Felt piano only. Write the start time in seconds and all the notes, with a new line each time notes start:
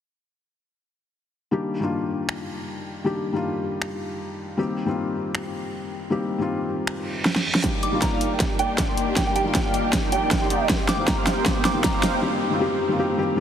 1.51 D#3 G3 A#3 D4 G4
1.80 D#3 G3 A#3 D4 F4
3.04 D#3 G3 A#3 D4 G4
3.32 D#3 G3 A#3 D4
3.36 F4
4.57 D#3 G3 A#3 C4 G4
4.85 D#3 G3 A#3 C4 F4
6.10 D#3 G3 A#3 C4 G4
6.38 D#3 G3 A#3 C4 F4
7.63 D#3 G3 A#3 D4 G4
7.91 D#3 G3 A#3 D4
7.95 F4
9.15 D#3 G3 A#3 D4 G4
9.44 D#3 G3 A#3 D4
9.48 F4
10.69 D#3 G3 A#3 C4 G4
10.97 D#3 G3 A#3 C4
11.01 F4
11.45 D#3 G3 A#3 C4 G4
11.73 D#3 G3 A#3 C4
11.77 F4
12.21 D#3 G3 A#3 C4 G4
12.50 D#3 G3 A#3 C4 F4
12.59 D#3 G3 A#3 C4 G4
12.88 D#3 G3 A#3 C4
12.92 F4
12.98 D#3 G3 A#3 C4 G4
13.17 D#3 G3 A#3 C4 G4
13.36 D#3 G3 A#3